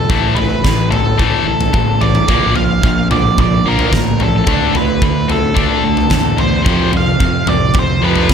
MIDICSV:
0, 0, Header, 1, 6, 480
1, 0, Start_track
1, 0, Tempo, 545951
1, 93, Time_signature, 4, 2, 24, 8
1, 7332, End_track
2, 0, Start_track
2, 0, Title_t, "Lead electric guitar"
2, 0, Program_c, 0, 29
2, 0, Note_on_c, 0, 69, 85
2, 307, Note_off_c, 0, 69, 0
2, 310, Note_on_c, 0, 71, 89
2, 792, Note_off_c, 0, 71, 0
2, 796, Note_on_c, 0, 69, 76
2, 1765, Note_on_c, 0, 74, 77
2, 1794, Note_off_c, 0, 69, 0
2, 2248, Note_off_c, 0, 74, 0
2, 2252, Note_on_c, 0, 77, 96
2, 2699, Note_off_c, 0, 77, 0
2, 2738, Note_on_c, 0, 74, 71
2, 2983, Note_off_c, 0, 74, 0
2, 2997, Note_on_c, 0, 74, 85
2, 3232, Note_off_c, 0, 74, 0
2, 3237, Note_on_c, 0, 70, 79
2, 3713, Note_off_c, 0, 70, 0
2, 3717, Note_on_c, 0, 69, 82
2, 4191, Note_off_c, 0, 69, 0
2, 4194, Note_on_c, 0, 71, 81
2, 4668, Note_off_c, 0, 71, 0
2, 4671, Note_on_c, 0, 69, 73
2, 5623, Note_off_c, 0, 69, 0
2, 5627, Note_on_c, 0, 72, 76
2, 6067, Note_off_c, 0, 72, 0
2, 6126, Note_on_c, 0, 77, 91
2, 6584, Note_off_c, 0, 77, 0
2, 6587, Note_on_c, 0, 74, 79
2, 6828, Note_off_c, 0, 74, 0
2, 6851, Note_on_c, 0, 72, 89
2, 7067, Note_off_c, 0, 72, 0
2, 7071, Note_on_c, 0, 71, 78
2, 7332, Note_off_c, 0, 71, 0
2, 7332, End_track
3, 0, Start_track
3, 0, Title_t, "Clean electric guitar"
3, 0, Program_c, 1, 27
3, 0, Note_on_c, 1, 53, 61
3, 0, Note_on_c, 1, 57, 63
3, 0, Note_on_c, 1, 60, 58
3, 89, Note_off_c, 1, 53, 0
3, 91, Note_on_c, 1, 45, 66
3, 92, Note_off_c, 1, 60, 0
3, 97, Note_off_c, 1, 57, 0
3, 330, Note_on_c, 1, 64, 64
3, 571, Note_on_c, 1, 57, 66
3, 817, Note_on_c, 1, 61, 62
3, 1064, Note_on_c, 1, 52, 60
3, 1287, Note_off_c, 1, 57, 0
3, 1293, Note_off_c, 1, 45, 0
3, 1298, Note_on_c, 1, 57, 68
3, 1532, Note_off_c, 1, 64, 0
3, 1538, Note_off_c, 1, 52, 0
3, 1548, Note_on_c, 1, 52, 67
3, 1767, Note_off_c, 1, 61, 0
3, 1777, Note_on_c, 1, 61, 56
3, 2016, Note_off_c, 1, 57, 0
3, 2016, Note_off_c, 1, 61, 0
3, 2018, Note_on_c, 1, 46, 64
3, 2021, Note_off_c, 1, 52, 0
3, 2262, Note_on_c, 1, 65, 70
3, 2496, Note_on_c, 1, 58, 69
3, 2736, Note_on_c, 1, 62, 59
3, 2969, Note_on_c, 1, 50, 72
3, 3202, Note_off_c, 1, 58, 0
3, 3212, Note_on_c, 1, 58, 63
3, 3216, Note_off_c, 1, 46, 0
3, 3438, Note_off_c, 1, 50, 0
3, 3449, Note_on_c, 1, 50, 64
3, 3678, Note_off_c, 1, 62, 0
3, 3689, Note_on_c, 1, 62, 61
3, 3914, Note_off_c, 1, 50, 0
3, 3925, Note_on_c, 1, 50, 73
3, 3931, Note_off_c, 1, 62, 0
3, 3933, Note_off_c, 1, 58, 0
3, 4164, Note_off_c, 1, 65, 0
3, 4167, Note_on_c, 1, 65, 74
3, 4414, Note_on_c, 1, 57, 69
3, 4650, Note_on_c, 1, 62, 70
3, 4884, Note_off_c, 1, 50, 0
3, 4894, Note_on_c, 1, 50, 72
3, 5135, Note_off_c, 1, 57, 0
3, 5138, Note_on_c, 1, 57, 65
3, 5364, Note_off_c, 1, 50, 0
3, 5371, Note_off_c, 1, 65, 0
3, 5374, Note_on_c, 1, 50, 72
3, 5605, Note_off_c, 1, 62, 0
3, 5616, Note_on_c, 1, 62, 59
3, 5854, Note_off_c, 1, 50, 0
3, 5855, Note_off_c, 1, 62, 0
3, 5856, Note_on_c, 1, 41, 68
3, 6095, Note_on_c, 1, 65, 78
3, 6328, Note_off_c, 1, 57, 0
3, 6332, Note_on_c, 1, 57, 68
3, 6576, Note_on_c, 1, 60, 64
3, 6816, Note_on_c, 1, 53, 64
3, 7041, Note_off_c, 1, 57, 0
3, 7051, Note_on_c, 1, 57, 62
3, 7056, Note_off_c, 1, 41, 0
3, 7276, Note_off_c, 1, 53, 0
3, 7287, Note_on_c, 1, 53, 64
3, 7295, Note_off_c, 1, 65, 0
3, 7332, Note_off_c, 1, 53, 0
3, 7332, Note_off_c, 1, 57, 0
3, 7332, Note_off_c, 1, 60, 0
3, 7332, End_track
4, 0, Start_track
4, 0, Title_t, "Distorted electric guitar"
4, 0, Program_c, 2, 30
4, 86, Note_on_c, 2, 45, 90
4, 87, Note_on_c, 2, 52, 82
4, 88, Note_on_c, 2, 57, 97
4, 315, Note_off_c, 2, 45, 0
4, 316, Note_off_c, 2, 52, 0
4, 316, Note_off_c, 2, 57, 0
4, 324, Note_on_c, 2, 45, 67
4, 329, Note_on_c, 2, 52, 69
4, 545, Note_off_c, 2, 45, 0
4, 547, Note_off_c, 2, 52, 0
4, 563, Note_on_c, 2, 45, 66
4, 569, Note_on_c, 2, 52, 80
4, 784, Note_off_c, 2, 45, 0
4, 787, Note_off_c, 2, 52, 0
4, 796, Note_on_c, 2, 45, 59
4, 800, Note_on_c, 2, 52, 66
4, 1021, Note_off_c, 2, 45, 0
4, 1023, Note_off_c, 2, 52, 0
4, 1035, Note_on_c, 2, 45, 71
4, 1044, Note_on_c, 2, 52, 83
4, 1045, Note_on_c, 2, 57, 93
4, 1270, Note_off_c, 2, 45, 0
4, 1274, Note_off_c, 2, 52, 0
4, 1275, Note_off_c, 2, 57, 0
4, 1287, Note_on_c, 2, 45, 70
4, 1288, Note_on_c, 2, 52, 69
4, 1507, Note_off_c, 2, 45, 0
4, 1507, Note_off_c, 2, 52, 0
4, 1523, Note_on_c, 2, 45, 59
4, 1527, Note_on_c, 2, 52, 74
4, 1745, Note_off_c, 2, 45, 0
4, 1747, Note_off_c, 2, 52, 0
4, 1770, Note_on_c, 2, 52, 75
4, 1771, Note_on_c, 2, 45, 74
4, 1988, Note_off_c, 2, 52, 0
4, 1989, Note_off_c, 2, 45, 0
4, 2006, Note_on_c, 2, 46, 83
4, 2015, Note_on_c, 2, 53, 88
4, 2017, Note_on_c, 2, 58, 101
4, 2236, Note_off_c, 2, 46, 0
4, 2240, Note_off_c, 2, 53, 0
4, 2241, Note_off_c, 2, 58, 0
4, 2248, Note_on_c, 2, 46, 70
4, 2254, Note_on_c, 2, 53, 73
4, 2467, Note_off_c, 2, 46, 0
4, 2470, Note_off_c, 2, 53, 0
4, 2495, Note_on_c, 2, 46, 67
4, 2496, Note_on_c, 2, 53, 77
4, 2711, Note_off_c, 2, 46, 0
4, 2711, Note_off_c, 2, 53, 0
4, 2733, Note_on_c, 2, 46, 59
4, 2739, Note_on_c, 2, 53, 73
4, 2949, Note_off_c, 2, 46, 0
4, 2953, Note_off_c, 2, 53, 0
4, 2975, Note_on_c, 2, 46, 69
4, 2982, Note_on_c, 2, 53, 71
4, 3191, Note_off_c, 2, 46, 0
4, 3194, Note_off_c, 2, 53, 0
4, 3217, Note_on_c, 2, 46, 88
4, 3220, Note_on_c, 2, 53, 82
4, 3223, Note_on_c, 2, 58, 92
4, 3436, Note_off_c, 2, 46, 0
4, 3442, Note_off_c, 2, 53, 0
4, 3444, Note_off_c, 2, 58, 0
4, 3447, Note_on_c, 2, 46, 63
4, 3455, Note_on_c, 2, 53, 83
4, 3667, Note_off_c, 2, 46, 0
4, 3671, Note_off_c, 2, 53, 0
4, 3692, Note_on_c, 2, 46, 67
4, 3696, Note_on_c, 2, 53, 78
4, 3909, Note_off_c, 2, 46, 0
4, 3911, Note_off_c, 2, 53, 0
4, 3931, Note_on_c, 2, 50, 91
4, 3935, Note_on_c, 2, 57, 78
4, 3939, Note_on_c, 2, 62, 99
4, 4154, Note_off_c, 2, 50, 0
4, 4160, Note_off_c, 2, 57, 0
4, 4162, Note_off_c, 2, 62, 0
4, 4165, Note_on_c, 2, 50, 72
4, 4176, Note_on_c, 2, 57, 69
4, 4385, Note_off_c, 2, 50, 0
4, 4391, Note_off_c, 2, 57, 0
4, 4413, Note_on_c, 2, 50, 67
4, 4421, Note_on_c, 2, 57, 78
4, 4629, Note_off_c, 2, 50, 0
4, 4634, Note_off_c, 2, 57, 0
4, 4646, Note_on_c, 2, 50, 66
4, 4646, Note_on_c, 2, 57, 65
4, 4864, Note_off_c, 2, 50, 0
4, 4866, Note_off_c, 2, 57, 0
4, 4874, Note_on_c, 2, 50, 89
4, 4881, Note_on_c, 2, 57, 85
4, 4883, Note_on_c, 2, 62, 99
4, 5110, Note_off_c, 2, 50, 0
4, 5113, Note_off_c, 2, 57, 0
4, 5114, Note_off_c, 2, 62, 0
4, 5132, Note_on_c, 2, 50, 68
4, 5139, Note_on_c, 2, 57, 73
4, 5349, Note_off_c, 2, 50, 0
4, 5352, Note_off_c, 2, 57, 0
4, 5369, Note_on_c, 2, 50, 72
4, 5375, Note_on_c, 2, 57, 77
4, 5588, Note_off_c, 2, 50, 0
4, 5590, Note_off_c, 2, 57, 0
4, 5605, Note_on_c, 2, 50, 67
4, 5612, Note_on_c, 2, 57, 78
4, 5826, Note_off_c, 2, 50, 0
4, 5829, Note_off_c, 2, 57, 0
4, 5838, Note_on_c, 2, 41, 92
4, 5843, Note_on_c, 2, 48, 100
4, 5848, Note_on_c, 2, 53, 100
4, 6072, Note_off_c, 2, 41, 0
4, 6074, Note_off_c, 2, 48, 0
4, 6077, Note_off_c, 2, 53, 0
4, 6086, Note_on_c, 2, 48, 73
4, 6089, Note_on_c, 2, 41, 62
4, 6307, Note_off_c, 2, 48, 0
4, 6308, Note_off_c, 2, 41, 0
4, 6327, Note_on_c, 2, 41, 65
4, 6331, Note_on_c, 2, 48, 75
4, 6547, Note_off_c, 2, 41, 0
4, 6549, Note_off_c, 2, 48, 0
4, 6570, Note_on_c, 2, 41, 65
4, 6574, Note_on_c, 2, 48, 80
4, 6788, Note_off_c, 2, 41, 0
4, 6790, Note_off_c, 2, 48, 0
4, 6812, Note_on_c, 2, 41, 65
4, 6813, Note_on_c, 2, 48, 69
4, 7030, Note_off_c, 2, 41, 0
4, 7030, Note_off_c, 2, 48, 0
4, 7048, Note_on_c, 2, 41, 89
4, 7056, Note_on_c, 2, 48, 85
4, 7059, Note_on_c, 2, 53, 104
4, 7277, Note_off_c, 2, 41, 0
4, 7281, Note_off_c, 2, 48, 0
4, 7283, Note_off_c, 2, 53, 0
4, 7299, Note_on_c, 2, 41, 69
4, 7302, Note_on_c, 2, 48, 74
4, 7332, Note_off_c, 2, 41, 0
4, 7332, Note_off_c, 2, 48, 0
4, 7332, End_track
5, 0, Start_track
5, 0, Title_t, "Fingered electric bass"
5, 0, Program_c, 3, 33
5, 83, Note_on_c, 3, 33, 95
5, 533, Note_off_c, 3, 33, 0
5, 566, Note_on_c, 3, 33, 77
5, 1015, Note_off_c, 3, 33, 0
5, 1045, Note_on_c, 3, 33, 88
5, 1160, Note_off_c, 3, 33, 0
5, 1284, Note_on_c, 3, 33, 90
5, 1510, Note_off_c, 3, 33, 0
5, 1528, Note_on_c, 3, 33, 77
5, 1976, Note_off_c, 3, 33, 0
5, 2007, Note_on_c, 3, 34, 94
5, 2455, Note_off_c, 3, 34, 0
5, 2488, Note_on_c, 3, 34, 80
5, 2936, Note_off_c, 3, 34, 0
5, 2971, Note_on_c, 3, 34, 94
5, 3194, Note_off_c, 3, 34, 0
5, 3206, Note_on_c, 3, 34, 82
5, 3432, Note_off_c, 3, 34, 0
5, 3449, Note_on_c, 3, 33, 75
5, 3896, Note_off_c, 3, 33, 0
5, 3932, Note_on_c, 3, 38, 103
5, 4378, Note_off_c, 3, 38, 0
5, 4412, Note_on_c, 3, 38, 79
5, 4858, Note_off_c, 3, 38, 0
5, 4892, Note_on_c, 3, 38, 95
5, 5004, Note_off_c, 3, 38, 0
5, 5133, Note_on_c, 3, 38, 93
5, 5355, Note_off_c, 3, 38, 0
5, 5367, Note_on_c, 3, 40, 83
5, 5815, Note_off_c, 3, 40, 0
5, 5855, Note_on_c, 3, 41, 101
5, 6299, Note_off_c, 3, 41, 0
5, 6331, Note_on_c, 3, 41, 81
5, 6778, Note_off_c, 3, 41, 0
5, 6812, Note_on_c, 3, 41, 94
5, 7035, Note_off_c, 3, 41, 0
5, 7057, Note_on_c, 3, 41, 74
5, 7278, Note_off_c, 3, 41, 0
5, 7293, Note_on_c, 3, 34, 83
5, 7332, Note_off_c, 3, 34, 0
5, 7332, End_track
6, 0, Start_track
6, 0, Title_t, "Drums"
6, 85, Note_on_c, 9, 36, 104
6, 85, Note_on_c, 9, 43, 82
6, 172, Note_off_c, 9, 43, 0
6, 173, Note_off_c, 9, 36, 0
6, 322, Note_on_c, 9, 43, 78
6, 322, Note_on_c, 9, 47, 64
6, 410, Note_off_c, 9, 43, 0
6, 410, Note_off_c, 9, 47, 0
6, 567, Note_on_c, 9, 36, 99
6, 575, Note_on_c, 9, 38, 71
6, 655, Note_off_c, 9, 36, 0
6, 663, Note_off_c, 9, 38, 0
6, 810, Note_on_c, 9, 43, 75
6, 810, Note_on_c, 9, 47, 68
6, 898, Note_off_c, 9, 43, 0
6, 898, Note_off_c, 9, 47, 0
6, 1050, Note_on_c, 9, 36, 86
6, 1050, Note_on_c, 9, 43, 67
6, 1138, Note_off_c, 9, 36, 0
6, 1138, Note_off_c, 9, 43, 0
6, 1411, Note_on_c, 9, 43, 78
6, 1499, Note_off_c, 9, 43, 0
6, 1526, Note_on_c, 9, 47, 74
6, 1529, Note_on_c, 9, 36, 90
6, 1614, Note_off_c, 9, 47, 0
6, 1617, Note_off_c, 9, 36, 0
6, 1772, Note_on_c, 9, 43, 75
6, 1860, Note_off_c, 9, 43, 0
6, 1889, Note_on_c, 9, 47, 75
6, 1977, Note_off_c, 9, 47, 0
6, 2006, Note_on_c, 9, 43, 87
6, 2009, Note_on_c, 9, 36, 110
6, 2094, Note_off_c, 9, 43, 0
6, 2097, Note_off_c, 9, 36, 0
6, 2247, Note_on_c, 9, 43, 74
6, 2335, Note_off_c, 9, 43, 0
6, 2492, Note_on_c, 9, 36, 100
6, 2580, Note_off_c, 9, 36, 0
6, 2733, Note_on_c, 9, 43, 69
6, 2733, Note_on_c, 9, 47, 70
6, 2821, Note_off_c, 9, 43, 0
6, 2821, Note_off_c, 9, 47, 0
6, 2973, Note_on_c, 9, 36, 95
6, 2977, Note_on_c, 9, 43, 73
6, 3061, Note_off_c, 9, 36, 0
6, 3065, Note_off_c, 9, 43, 0
6, 3332, Note_on_c, 9, 43, 73
6, 3419, Note_off_c, 9, 43, 0
6, 3451, Note_on_c, 9, 47, 70
6, 3452, Note_on_c, 9, 36, 92
6, 3459, Note_on_c, 9, 38, 73
6, 3539, Note_off_c, 9, 47, 0
6, 3540, Note_off_c, 9, 36, 0
6, 3547, Note_off_c, 9, 38, 0
6, 3692, Note_on_c, 9, 43, 73
6, 3780, Note_off_c, 9, 43, 0
6, 3928, Note_on_c, 9, 43, 78
6, 3931, Note_on_c, 9, 36, 104
6, 4016, Note_off_c, 9, 43, 0
6, 4019, Note_off_c, 9, 36, 0
6, 4175, Note_on_c, 9, 43, 77
6, 4263, Note_off_c, 9, 43, 0
6, 4413, Note_on_c, 9, 36, 94
6, 4500, Note_off_c, 9, 36, 0
6, 4655, Note_on_c, 9, 43, 76
6, 4743, Note_off_c, 9, 43, 0
6, 4894, Note_on_c, 9, 36, 100
6, 4895, Note_on_c, 9, 43, 71
6, 4982, Note_off_c, 9, 36, 0
6, 4983, Note_off_c, 9, 43, 0
6, 5249, Note_on_c, 9, 43, 73
6, 5337, Note_off_c, 9, 43, 0
6, 5363, Note_on_c, 9, 47, 73
6, 5371, Note_on_c, 9, 38, 71
6, 5372, Note_on_c, 9, 36, 103
6, 5451, Note_off_c, 9, 47, 0
6, 5459, Note_off_c, 9, 38, 0
6, 5460, Note_off_c, 9, 36, 0
6, 5613, Note_on_c, 9, 43, 75
6, 5701, Note_off_c, 9, 43, 0
6, 5856, Note_on_c, 9, 36, 116
6, 5856, Note_on_c, 9, 43, 83
6, 5944, Note_off_c, 9, 36, 0
6, 5944, Note_off_c, 9, 43, 0
6, 6093, Note_on_c, 9, 43, 83
6, 6181, Note_off_c, 9, 43, 0
6, 6334, Note_on_c, 9, 36, 99
6, 6422, Note_off_c, 9, 36, 0
6, 6569, Note_on_c, 9, 43, 76
6, 6569, Note_on_c, 9, 47, 66
6, 6657, Note_off_c, 9, 43, 0
6, 6657, Note_off_c, 9, 47, 0
6, 6803, Note_on_c, 9, 43, 76
6, 6811, Note_on_c, 9, 36, 106
6, 6891, Note_off_c, 9, 43, 0
6, 6899, Note_off_c, 9, 36, 0
6, 7170, Note_on_c, 9, 43, 74
6, 7258, Note_off_c, 9, 43, 0
6, 7292, Note_on_c, 9, 47, 72
6, 7293, Note_on_c, 9, 36, 108
6, 7300, Note_on_c, 9, 38, 74
6, 7332, Note_off_c, 9, 36, 0
6, 7332, Note_off_c, 9, 38, 0
6, 7332, Note_off_c, 9, 47, 0
6, 7332, End_track
0, 0, End_of_file